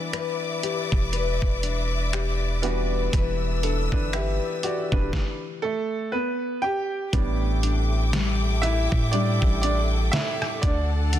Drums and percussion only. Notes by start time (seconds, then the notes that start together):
0.13 finger snap, closed hi-hat
0.63 closed hi-hat
0.92 kick
1.13 closed hi-hat
1.42 kick
1.63 closed hi-hat
2.13 finger snap, closed hi-hat
2.63 closed hi-hat
3.13 kick, closed hi-hat
3.63 closed hi-hat
3.92 kick
4.13 finger snap, closed hi-hat
4.63 closed hi-hat
4.92 kick
5.13 kick, snare
7.13 kick, closed hi-hat
7.63 closed hi-hat
8.13 snare, closed hi-hat
8.63 cross-stick, closed hi-hat
8.92 kick
9.13 closed hi-hat
9.42 kick
9.63 closed hi-hat
10.13 snare, closed hi-hat
10.42 cross-stick
10.63 kick, closed hi-hat
11.13 closed hi-hat